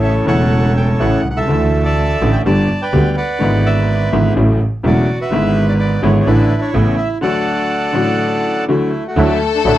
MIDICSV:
0, 0, Header, 1, 6, 480
1, 0, Start_track
1, 0, Key_signature, 2, "major"
1, 0, Tempo, 480769
1, 1494, Time_signature, 4, 2, 24, 8
1, 9765, End_track
2, 0, Start_track
2, 0, Title_t, "Bandoneon"
2, 0, Program_c, 0, 23
2, 0, Note_on_c, 0, 69, 52
2, 0, Note_on_c, 0, 73, 55
2, 41, Note_on_c, 0, 76, 70
2, 149, Note_off_c, 0, 76, 0
2, 259, Note_off_c, 0, 73, 0
2, 262, Note_off_c, 0, 69, 0
2, 274, Note_on_c, 0, 73, 59
2, 276, Note_on_c, 0, 78, 72
2, 277, Note_on_c, 0, 69, 59
2, 729, Note_off_c, 0, 78, 0
2, 768, Note_on_c, 0, 79, 61
2, 877, Note_off_c, 0, 79, 0
2, 1001, Note_on_c, 0, 78, 71
2, 1208, Note_off_c, 0, 73, 0
2, 1210, Note_off_c, 0, 69, 0
2, 1278, Note_off_c, 0, 78, 0
2, 1301, Note_on_c, 0, 78, 53
2, 1364, Note_on_c, 0, 76, 67
2, 1370, Note_on_c, 0, 69, 51
2, 1372, Note_off_c, 0, 78, 0
2, 1833, Note_off_c, 0, 76, 0
2, 1844, Note_on_c, 0, 81, 77
2, 1848, Note_on_c, 0, 76, 56
2, 1849, Note_on_c, 0, 74, 61
2, 2296, Note_off_c, 0, 69, 0
2, 2323, Note_on_c, 0, 79, 70
2, 2346, Note_off_c, 0, 81, 0
2, 2380, Note_off_c, 0, 79, 0
2, 2413, Note_off_c, 0, 76, 0
2, 2414, Note_off_c, 0, 74, 0
2, 2451, Note_on_c, 0, 81, 81
2, 2457, Note_on_c, 0, 74, 58
2, 2805, Note_off_c, 0, 74, 0
2, 2815, Note_on_c, 0, 79, 75
2, 2820, Note_on_c, 0, 71, 53
2, 2820, Note_on_c, 0, 74, 56
2, 2824, Note_off_c, 0, 81, 0
2, 3150, Note_off_c, 0, 79, 0
2, 3154, Note_off_c, 0, 71, 0
2, 3154, Note_off_c, 0, 74, 0
2, 3166, Note_on_c, 0, 78, 75
2, 3169, Note_on_c, 0, 71, 54
2, 3169, Note_on_c, 0, 74, 59
2, 3647, Note_off_c, 0, 71, 0
2, 3654, Note_on_c, 0, 76, 71
2, 3662, Note_on_c, 0, 71, 53
2, 3663, Note_off_c, 0, 78, 0
2, 4084, Note_off_c, 0, 74, 0
2, 4324, Note_off_c, 0, 76, 0
2, 4329, Note_off_c, 0, 71, 0
2, 4849, Note_on_c, 0, 66, 50
2, 4857, Note_on_c, 0, 74, 67
2, 5181, Note_off_c, 0, 74, 0
2, 5204, Note_on_c, 0, 71, 55
2, 5210, Note_on_c, 0, 76, 72
2, 5287, Note_off_c, 0, 66, 0
2, 5643, Note_off_c, 0, 76, 0
2, 5677, Note_on_c, 0, 74, 65
2, 5728, Note_off_c, 0, 74, 0
2, 5789, Note_on_c, 0, 74, 70
2, 6008, Note_off_c, 0, 74, 0
2, 6029, Note_on_c, 0, 73, 65
2, 6106, Note_off_c, 0, 71, 0
2, 6177, Note_off_c, 0, 73, 0
2, 6192, Note_on_c, 0, 73, 57
2, 6250, Note_on_c, 0, 62, 53
2, 6254, Note_on_c, 0, 64, 52
2, 6255, Note_on_c, 0, 71, 73
2, 6261, Note_off_c, 0, 73, 0
2, 6589, Note_off_c, 0, 71, 0
2, 6595, Note_off_c, 0, 64, 0
2, 6607, Note_on_c, 0, 73, 70
2, 6610, Note_on_c, 0, 64, 52
2, 6698, Note_off_c, 0, 62, 0
2, 6944, Note_off_c, 0, 73, 0
2, 6964, Note_on_c, 0, 76, 73
2, 7073, Note_off_c, 0, 76, 0
2, 7169, Note_off_c, 0, 64, 0
2, 7208, Note_on_c, 0, 78, 85
2, 7214, Note_on_c, 0, 69, 64
2, 7218, Note_on_c, 0, 74, 68
2, 8629, Note_off_c, 0, 78, 0
2, 8632, Note_off_c, 0, 69, 0
2, 8634, Note_off_c, 0, 74, 0
2, 8687, Note_on_c, 0, 64, 63
2, 8692, Note_on_c, 0, 57, 49
2, 9022, Note_off_c, 0, 64, 0
2, 9054, Note_off_c, 0, 57, 0
2, 9062, Note_on_c, 0, 66, 58
2, 9069, Note_on_c, 0, 57, 44
2, 9274, Note_off_c, 0, 66, 0
2, 9295, Note_on_c, 0, 64, 67
2, 9399, Note_off_c, 0, 64, 0
2, 9533, Note_on_c, 0, 62, 67
2, 9583, Note_off_c, 0, 62, 0
2, 9652, Note_on_c, 0, 62, 72
2, 9757, Note_off_c, 0, 62, 0
2, 9765, Note_off_c, 0, 57, 0
2, 9765, End_track
3, 0, Start_track
3, 0, Title_t, "Violin section"
3, 0, Program_c, 1, 48
3, 9165, Note_on_c, 1, 69, 81
3, 9765, Note_off_c, 1, 69, 0
3, 9765, End_track
4, 0, Start_track
4, 0, Title_t, "Bandoneon"
4, 0, Program_c, 2, 23
4, 9157, Note_on_c, 2, 54, 65
4, 9158, Note_on_c, 2, 62, 59
4, 9161, Note_on_c, 2, 64, 75
4, 9359, Note_off_c, 2, 54, 0
4, 9359, Note_off_c, 2, 62, 0
4, 9361, Note_off_c, 2, 64, 0
4, 9634, Note_on_c, 2, 54, 45
4, 9639, Note_on_c, 2, 62, 44
4, 9640, Note_on_c, 2, 64, 50
4, 9765, Note_off_c, 2, 54, 0
4, 9765, Note_off_c, 2, 62, 0
4, 9765, Note_off_c, 2, 64, 0
4, 9765, End_track
5, 0, Start_track
5, 0, Title_t, "Upright piano"
5, 0, Program_c, 3, 0
5, 0, Note_on_c, 3, 33, 61
5, 0, Note_on_c, 3, 45, 65
5, 0, Note_on_c, 3, 49, 59
5, 0, Note_on_c, 3, 52, 48
5, 0, Note_on_c, 3, 57, 51
5, 0, Note_on_c, 3, 64, 64
5, 233, Note_off_c, 3, 49, 0
5, 243, Note_off_c, 3, 52, 0
5, 245, Note_off_c, 3, 33, 0
5, 246, Note_off_c, 3, 45, 0
5, 247, Note_off_c, 3, 57, 0
5, 248, Note_on_c, 3, 49, 58
5, 254, Note_off_c, 3, 64, 0
5, 258, Note_on_c, 3, 52, 52
5, 267, Note_on_c, 3, 28, 67
5, 267, Note_on_c, 3, 40, 69
5, 273, Note_on_c, 3, 57, 50
5, 289, Note_on_c, 3, 64, 62
5, 956, Note_off_c, 3, 49, 0
5, 961, Note_off_c, 3, 52, 0
5, 965, Note_off_c, 3, 28, 0
5, 965, Note_off_c, 3, 40, 0
5, 968, Note_off_c, 3, 57, 0
5, 976, Note_off_c, 3, 64, 0
5, 996, Note_on_c, 3, 45, 62
5, 997, Note_on_c, 3, 52, 51
5, 1001, Note_on_c, 3, 49, 51
5, 1003, Note_on_c, 3, 57, 48
5, 1003, Note_on_c, 3, 64, 58
5, 1005, Note_on_c, 3, 33, 61
5, 1206, Note_off_c, 3, 45, 0
5, 1207, Note_off_c, 3, 52, 0
5, 1209, Note_off_c, 3, 49, 0
5, 1210, Note_off_c, 3, 33, 0
5, 1210, Note_off_c, 3, 57, 0
5, 1210, Note_off_c, 3, 64, 0
5, 1306, Note_on_c, 3, 35, 34
5, 1364, Note_on_c, 3, 36, 46
5, 1369, Note_off_c, 3, 35, 0
5, 1421, Note_on_c, 3, 37, 51
5, 1429, Note_off_c, 3, 36, 0
5, 1469, Note_on_c, 3, 50, 53
5, 1478, Note_on_c, 3, 52, 48
5, 1484, Note_off_c, 3, 50, 0
5, 1488, Note_off_c, 3, 37, 0
5, 1488, Note_on_c, 3, 38, 59
5, 1490, Note_on_c, 3, 50, 63
5, 1491, Note_on_c, 3, 57, 47
5, 1505, Note_on_c, 3, 64, 59
5, 2173, Note_off_c, 3, 52, 0
5, 2179, Note_off_c, 3, 38, 0
5, 2180, Note_off_c, 3, 50, 0
5, 2180, Note_off_c, 3, 57, 0
5, 2187, Note_off_c, 3, 64, 0
5, 2210, Note_on_c, 3, 50, 59
5, 2211, Note_on_c, 3, 33, 67
5, 2214, Note_on_c, 3, 64, 64
5, 2216, Note_on_c, 3, 45, 65
5, 2216, Note_on_c, 3, 52, 52
5, 2218, Note_on_c, 3, 57, 50
5, 2415, Note_off_c, 3, 50, 0
5, 2416, Note_off_c, 3, 33, 0
5, 2417, Note_off_c, 3, 64, 0
5, 2418, Note_off_c, 3, 45, 0
5, 2418, Note_off_c, 3, 52, 0
5, 2419, Note_off_c, 3, 57, 0
5, 2451, Note_on_c, 3, 50, 55
5, 2453, Note_on_c, 3, 43, 63
5, 2455, Note_on_c, 3, 31, 63
5, 2455, Note_on_c, 3, 55, 51
5, 2455, Note_on_c, 3, 59, 48
5, 2460, Note_on_c, 3, 67, 59
5, 2655, Note_off_c, 3, 50, 0
5, 2656, Note_off_c, 3, 43, 0
5, 2657, Note_off_c, 3, 31, 0
5, 2657, Note_off_c, 3, 55, 0
5, 2657, Note_off_c, 3, 59, 0
5, 2660, Note_off_c, 3, 67, 0
5, 2923, Note_on_c, 3, 50, 66
5, 2923, Note_on_c, 3, 55, 52
5, 2924, Note_on_c, 3, 59, 52
5, 2927, Note_on_c, 3, 67, 64
5, 2928, Note_on_c, 3, 38, 67
5, 3131, Note_off_c, 3, 55, 0
5, 3132, Note_off_c, 3, 59, 0
5, 3133, Note_off_c, 3, 67, 0
5, 3134, Note_off_c, 3, 38, 0
5, 3134, Note_off_c, 3, 50, 0
5, 3384, Note_on_c, 3, 50, 55
5, 3396, Note_on_c, 3, 56, 52
5, 3399, Note_on_c, 3, 32, 64
5, 3402, Note_on_c, 3, 44, 65
5, 3407, Note_on_c, 3, 59, 54
5, 3428, Note_on_c, 3, 64, 61
5, 4076, Note_off_c, 3, 50, 0
5, 4082, Note_off_c, 3, 56, 0
5, 4083, Note_off_c, 3, 32, 0
5, 4085, Note_off_c, 3, 44, 0
5, 4087, Note_off_c, 3, 59, 0
5, 4098, Note_off_c, 3, 64, 0
5, 4118, Note_on_c, 3, 50, 57
5, 4120, Note_on_c, 3, 56, 55
5, 4122, Note_on_c, 3, 44, 69
5, 4122, Note_on_c, 3, 64, 66
5, 4123, Note_on_c, 3, 32, 70
5, 4126, Note_on_c, 3, 59, 55
5, 4322, Note_off_c, 3, 50, 0
5, 4323, Note_off_c, 3, 56, 0
5, 4324, Note_off_c, 3, 32, 0
5, 4324, Note_off_c, 3, 44, 0
5, 4324, Note_off_c, 3, 64, 0
5, 4326, Note_off_c, 3, 59, 0
5, 4352, Note_on_c, 3, 49, 53
5, 4357, Note_on_c, 3, 33, 67
5, 4357, Note_on_c, 3, 54, 51
5, 4359, Note_on_c, 3, 45, 62
5, 4360, Note_on_c, 3, 57, 51
5, 4362, Note_on_c, 3, 64, 61
5, 4558, Note_off_c, 3, 49, 0
5, 4560, Note_off_c, 3, 33, 0
5, 4560, Note_off_c, 3, 54, 0
5, 4561, Note_off_c, 3, 45, 0
5, 4562, Note_off_c, 3, 57, 0
5, 4563, Note_off_c, 3, 64, 0
5, 4826, Note_on_c, 3, 49, 59
5, 4831, Note_on_c, 3, 28, 67
5, 4831, Note_on_c, 3, 57, 52
5, 4832, Note_on_c, 3, 40, 69
5, 4837, Note_on_c, 3, 54, 54
5, 4840, Note_on_c, 3, 64, 65
5, 5033, Note_off_c, 3, 49, 0
5, 5036, Note_off_c, 3, 28, 0
5, 5036, Note_off_c, 3, 40, 0
5, 5036, Note_off_c, 3, 57, 0
5, 5038, Note_off_c, 3, 54, 0
5, 5040, Note_off_c, 3, 64, 0
5, 5296, Note_on_c, 3, 50, 54
5, 5310, Note_on_c, 3, 32, 72
5, 5310, Note_on_c, 3, 56, 52
5, 5314, Note_on_c, 3, 44, 65
5, 5322, Note_on_c, 3, 59, 53
5, 5339, Note_on_c, 3, 64, 60
5, 5979, Note_off_c, 3, 50, 0
5, 5986, Note_off_c, 3, 32, 0
5, 5986, Note_off_c, 3, 56, 0
5, 5988, Note_off_c, 3, 44, 0
5, 5992, Note_off_c, 3, 59, 0
5, 6000, Note_off_c, 3, 64, 0
5, 6017, Note_on_c, 3, 32, 76
5, 6018, Note_on_c, 3, 56, 56
5, 6019, Note_on_c, 3, 50, 62
5, 6022, Note_on_c, 3, 59, 61
5, 6023, Note_on_c, 3, 44, 72
5, 6027, Note_on_c, 3, 64, 70
5, 6220, Note_off_c, 3, 32, 0
5, 6220, Note_off_c, 3, 50, 0
5, 6220, Note_off_c, 3, 56, 0
5, 6222, Note_off_c, 3, 59, 0
5, 6223, Note_off_c, 3, 44, 0
5, 6224, Note_off_c, 3, 64, 0
5, 6256, Note_on_c, 3, 50, 57
5, 6260, Note_on_c, 3, 33, 68
5, 6261, Note_on_c, 3, 45, 66
5, 6263, Note_on_c, 3, 52, 52
5, 6263, Note_on_c, 3, 57, 53
5, 6264, Note_on_c, 3, 64, 65
5, 6458, Note_off_c, 3, 50, 0
5, 6460, Note_off_c, 3, 33, 0
5, 6460, Note_off_c, 3, 45, 0
5, 6461, Note_off_c, 3, 52, 0
5, 6461, Note_off_c, 3, 57, 0
5, 6462, Note_off_c, 3, 64, 0
5, 6725, Note_on_c, 3, 49, 58
5, 6729, Note_on_c, 3, 45, 69
5, 6730, Note_on_c, 3, 59, 57
5, 6731, Note_on_c, 3, 57, 54
5, 6732, Note_on_c, 3, 33, 72
5, 6734, Note_on_c, 3, 64, 68
5, 6931, Note_off_c, 3, 49, 0
5, 6933, Note_off_c, 3, 45, 0
5, 6933, Note_off_c, 3, 59, 0
5, 6934, Note_off_c, 3, 33, 0
5, 6934, Note_off_c, 3, 57, 0
5, 6935, Note_off_c, 3, 64, 0
5, 7198, Note_on_c, 3, 50, 67
5, 7215, Note_on_c, 3, 54, 54
5, 7220, Note_on_c, 3, 38, 69
5, 7224, Note_on_c, 3, 57, 52
5, 7235, Note_on_c, 3, 66, 61
5, 7894, Note_off_c, 3, 50, 0
5, 7898, Note_off_c, 3, 54, 0
5, 7901, Note_off_c, 3, 38, 0
5, 7903, Note_off_c, 3, 57, 0
5, 7908, Note_off_c, 3, 66, 0
5, 7909, Note_on_c, 3, 50, 59
5, 7924, Note_on_c, 3, 54, 55
5, 7928, Note_on_c, 3, 33, 68
5, 7928, Note_on_c, 3, 45, 70
5, 7938, Note_on_c, 3, 57, 52
5, 7949, Note_on_c, 3, 66, 65
5, 8621, Note_off_c, 3, 50, 0
5, 8629, Note_off_c, 3, 54, 0
5, 8631, Note_off_c, 3, 33, 0
5, 8631, Note_off_c, 3, 45, 0
5, 8636, Note_off_c, 3, 57, 0
5, 8641, Note_off_c, 3, 66, 0
5, 8670, Note_on_c, 3, 50, 63
5, 8674, Note_on_c, 3, 38, 68
5, 8674, Note_on_c, 3, 57, 51
5, 8675, Note_on_c, 3, 54, 50
5, 8677, Note_on_c, 3, 66, 61
5, 8880, Note_off_c, 3, 38, 0
5, 8880, Note_off_c, 3, 50, 0
5, 8880, Note_off_c, 3, 57, 0
5, 8881, Note_off_c, 3, 54, 0
5, 8882, Note_off_c, 3, 66, 0
5, 9147, Note_on_c, 3, 38, 77
5, 9147, Note_on_c, 3, 50, 74
5, 9149, Note_on_c, 3, 57, 57
5, 9152, Note_on_c, 3, 54, 58
5, 9154, Note_on_c, 3, 64, 65
5, 9354, Note_off_c, 3, 38, 0
5, 9355, Note_off_c, 3, 50, 0
5, 9355, Note_off_c, 3, 57, 0
5, 9357, Note_off_c, 3, 54, 0
5, 9358, Note_off_c, 3, 64, 0
5, 9628, Note_on_c, 3, 50, 42
5, 9629, Note_on_c, 3, 54, 44
5, 9633, Note_on_c, 3, 45, 52
5, 9634, Note_on_c, 3, 33, 53
5, 9635, Note_on_c, 3, 57, 42
5, 9637, Note_on_c, 3, 64, 50
5, 9765, Note_off_c, 3, 33, 0
5, 9765, Note_off_c, 3, 45, 0
5, 9765, Note_off_c, 3, 50, 0
5, 9765, Note_off_c, 3, 54, 0
5, 9765, Note_off_c, 3, 57, 0
5, 9765, Note_off_c, 3, 64, 0
5, 9765, End_track
6, 0, Start_track
6, 0, Title_t, "Double bass"
6, 0, Program_c, 4, 43
6, 0, Note_on_c, 4, 33, 77
6, 241, Note_off_c, 4, 33, 0
6, 277, Note_on_c, 4, 28, 77
6, 970, Note_off_c, 4, 28, 0
6, 1003, Note_on_c, 4, 33, 70
6, 1209, Note_off_c, 4, 33, 0
6, 1244, Note_on_c, 4, 36, 48
6, 1481, Note_off_c, 4, 36, 0
6, 1487, Note_on_c, 4, 38, 74
6, 2178, Note_off_c, 4, 38, 0
6, 2206, Note_on_c, 4, 33, 68
6, 2413, Note_off_c, 4, 33, 0
6, 2451, Note_on_c, 4, 31, 73
6, 2655, Note_off_c, 4, 31, 0
6, 2926, Note_on_c, 4, 38, 73
6, 3133, Note_off_c, 4, 38, 0
6, 3407, Note_on_c, 4, 32, 74
6, 4087, Note_off_c, 4, 32, 0
6, 4120, Note_on_c, 4, 32, 74
6, 4323, Note_off_c, 4, 32, 0
6, 4353, Note_on_c, 4, 33, 80
6, 4558, Note_off_c, 4, 33, 0
6, 4838, Note_on_c, 4, 28, 72
6, 5039, Note_off_c, 4, 28, 0
6, 5310, Note_on_c, 4, 32, 77
6, 5986, Note_off_c, 4, 32, 0
6, 6016, Note_on_c, 4, 32, 80
6, 6219, Note_off_c, 4, 32, 0
6, 6249, Note_on_c, 4, 33, 80
6, 6455, Note_off_c, 4, 33, 0
6, 6732, Note_on_c, 4, 33, 77
6, 6934, Note_off_c, 4, 33, 0
6, 9154, Note_on_c, 4, 38, 79
6, 9357, Note_off_c, 4, 38, 0
6, 9633, Note_on_c, 4, 33, 56
6, 9765, Note_off_c, 4, 33, 0
6, 9765, End_track
0, 0, End_of_file